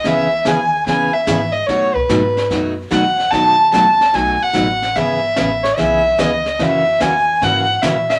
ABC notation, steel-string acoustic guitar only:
X:1
M:4/4
L:1/8
Q:"Swing" 1/4=146
K:Bmix
V:1 name="Steel-string acoustic guitar"
[C,E,B,CG] z [C,E,B,CG] z [C,E,B,CG] z [C,E,B,CG] z | [B,,F,A,DF] z [B,,F,A,DF] z [B,,F,A,DF] z [B,,F,A,DF] z | [B,,F,A,DF] z [B,,F,A,DF] z [B,,F,A,DF] z [B,,F,A,DF] z | [C,E,B,CG] z [C,E,B,CG] z [C,E,B,CG] z [C,E,B,CG] z |
[C,E,^A,CF] z [C,E,A,CF] z [C,E,A,CF] z [C,E,A,CF] z |]